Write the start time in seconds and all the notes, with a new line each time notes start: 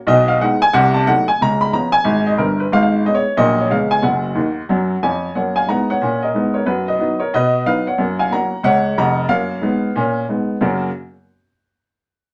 0.07 B1 B2 D#5
0.28 F5
0.41 G#3 B3 D#4 F#5
0.62 G#5
0.73 C2 C3 F#5
0.94 A5
1.06 F#3 A3 D#4 F#5
1.28 G#5
1.41 C#2 C#3 A#5
1.61 B5
1.73 F3 B3 C#4 A#5
1.92 G#5
2.04 G#1 G#2
2.26 D#5
2.37 G1 G2 A#4
2.60 B4
2.72 G#1 G#2 F5
2.82 F5
3.05 G#3 B3 C#4 D#5
3.15 C#5
3.37 A#1 A#2 F#3 A#3 C#4 D#5
3.61 C#5
3.70 C#2 C#3 G#3 B3 C#4 F5
3.91 G#5
4.02 F#1 F#2 F#5
4.35 D#2 D#3
4.69 F#2 F#3
5.03 F2 F3 C#5 G#5
5.35 F#2 A#3 C#5 F#5
5.56 F5 G#5
5.68 G#2 B3 F#5 A#5
5.90 C#5 F#5
6.02 A#2 C#4
6.23 A#4 D#5
6.34 G#2 B3
6.54 A#4 C#5
6.66 F#2 F#4 B4
6.88 B4 D#5
6.99 F#3 B3 D#4
7.20 A#4 C#5
7.34 B2 B4 D#5
7.66 F#3 B3 D#4 B4 F5
7.87 C#5 F#5
7.98 F#2 A#3
8.19 F5 G#5
8.32 F#3 A#3 C#4 F#5 A#5
8.63 C#2 C#5 F#5
8.98 F1 F2 F#5 A#5
9.29 F#2 A#3 C#5 F5
9.61 G#2 B3
9.96 A#2 C#4
10.29 G#2 B3
10.61 F#2 C#3 A#3 C#4 F#4 A#4 F#5